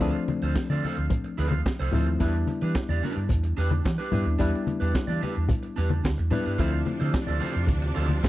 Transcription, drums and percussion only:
0.01 kick loud
0.01 closed hi-hat medium
0.01 muted conga soft
0.15 closed hi-hat soft
0.28 closed hi-hat medium
0.28 muted conga soft
0.28 high conga medium
0.42 closed hi-hat soft
0.56 kick loud
0.56 snare loud
0.56 clap medium
0.56 muted conga soft
0.69 closed hi-hat soft
0.69 high conga medium
0.83 open hi-hat medium
0.83 muted conga soft
0.83 high conga medium
0.97 closed hi-hat soft
1.10 kick loud
1.10 closed hi-hat medium
1.10 low conga medium
1.24 closed hi-hat soft
1.38 closed hi-hat medium
1.51 closed hi-hat soft
1.51 high conga medium
1.66 kick loud
1.66 snare loud
1.66 clap medium
1.79 closed hi-hat soft
1.92 snare soft
1.92 open hi-hat medium
1.92 muted conga soft
1.92 low conga medium
2.06 closed hi-hat medium
2.20 kick medium
2.20 closed hi-hat medium
2.20 muted conga soft
2.35 closed hi-hat soft
2.47 closed hi-hat medium
2.47 high conga medium
2.61 closed hi-hat soft
2.75 kick loud
2.75 snare loud
2.75 clap medium
2.75 muted conga soft
2.88 closed hi-hat soft
2.88 high conga medium
3.03 open hi-hat medium
3.03 high conga medium
3.16 closed hi-hat soft
3.29 kick loud
3.29 closed hi-hat medium
3.29 muted conga soft
3.29 low conga medium
3.44 closed hi-hat medium
3.58 closed hi-hat medium
3.58 muted conga soft
3.71 closed hi-hat soft
3.71 high conga medium
3.85 kick loud
3.85 snare medium
3.85 clap loud
3.85 muted conga soft
3.99 closed hi-hat soft
4.12 open hi-hat medium
4.12 muted conga soft
4.12 low conga medium
4.27 closed hi-hat soft
4.40 kick loud
4.40 closed hi-hat medium
4.40 muted conga soft
4.55 closed hi-hat soft
4.67 closed hi-hat medium
4.67 high conga medium
4.81 closed hi-hat soft
4.95 kick loud
4.95 snare loud
4.95 clap medium
5.08 closed hi-hat soft
5.08 high conga medium
5.23 closed hi-hat medium
5.23 muted conga soft
5.23 high conga medium
5.36 closed hi-hat soft
5.49 kick loud
5.49 closed hi-hat medium
5.49 muted conga soft
5.49 low conga medium
5.63 closed hi-hat medium
5.77 closed hi-hat medium
5.90 closed hi-hat soft
5.90 high conga medium
6.04 kick medium
6.04 snare loud
6.04 clap medium
6.04 muted conga soft
6.17 closed hi-hat soft
6.31 open hi-hat medium
6.31 low conga medium
6.45 closed hi-hat medium
6.59 kick loud
6.59 closed hi-hat medium
6.59 muted conga soft
6.74 closed hi-hat soft
6.86 closed hi-hat medium
6.86 high conga medium
7.00 closed hi-hat soft
7.14 kick loud
7.14 snare loud
7.14 clap medium
7.27 closed hi-hat soft
7.27 high conga medium
7.42 open hi-hat medium
7.42 high conga medium
7.55 closed hi-hat soft
7.67 kick loud
7.67 closed hi-hat medium
7.67 low conga medium
7.82 closed hi-hat medium
7.95 closed hi-hat medium
7.95 muted conga soft
8.09 closed hi-hat soft
8.09 high conga medium
8.23 kick loud
8.23 snare loud
8.23 clap medium
8.23 muted conga soft

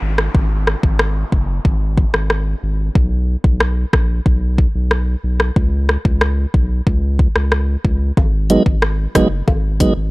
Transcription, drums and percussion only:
0.18 cross-stick medium
0.35 kick loud
0.67 cross-stick medium
0.83 kick loud
0.99 cross-stick loud
1.32 kick medium
1.65 kick medium
1.98 kick medium
2.14 cross-stick medium
2.30 cross-stick medium
2.95 kick loud
3.44 kick loud
3.60 cross-stick loud
3.93 kick medium
3.93 cross-stick medium
4.26 kick medium
4.58 kick medium
4.91 cross-stick medium
5.40 cross-stick medium
5.56 kick loud
5.89 cross-stick medium
6.05 kick loud
6.21 cross-stick loud
6.54 kick medium
6.87 kick medium
7.19 kick medium
7.36 cross-stick medium
7.52 cross-stick medium
7.85 kick medium
8.17 kick loud
8.17 high bongo medium
8.50 closed hi-hat medium
8.66 kick loud
8.82 cross-stick loud
9.15 kick medium
9.15 cross-stick medium
9.15 closed hi-hat medium
9.15 low bongo medium
9.48 kick loud
9.48 high bongo medium
9.80 kick medium
9.80 closed hi-hat medium

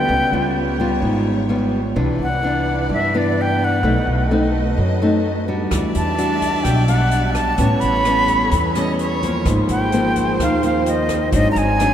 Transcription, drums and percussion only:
5.71 kick medium
5.71 cross-stick medium
5.71 closed hi-hat medium
5.95 closed hi-hat soft
6.18 closed hi-hat soft
6.42 kick soft
6.42 closed hi-hat soft
6.65 kick medium
6.65 cross-stick medium
6.65 closed hi-hat medium
6.88 closed hi-hat soft
7.11 closed hi-hat soft
7.35 kick soft
7.35 cross-stick medium
7.35 closed hi-hat soft
7.58 kick medium
7.58 closed hi-hat medium
7.81 closed hi-hat soft
8.05 cross-stick medium
8.05 closed hi-hat soft
8.28 kick soft
8.28 closed hi-hat soft
8.51 kick medium
8.51 closed hi-hat medium
8.75 cross-stick medium
8.75 closed hi-hat soft
8.99 closed hi-hat soft
9.22 kick soft
9.22 closed hi-hat soft
9.45 kick medium
9.45 cross-stick medium
9.45 closed hi-hat medium
9.69 closed hi-hat soft
9.92 closed hi-hat soft
10.16 kick soft
10.16 closed hi-hat soft
10.39 kick medium
10.39 cross-stick medium
10.39 closed hi-hat medium
10.63 closed hi-hat soft
10.86 closed hi-hat soft
11.09 kick soft
11.09 cross-stick medium
11.09 closed hi-hat soft
11.32 kick medium
11.32 closed hi-hat medium
11.56 closed hi-hat soft
11.80 cross-stick medium
11.80 closed hi-hat soft

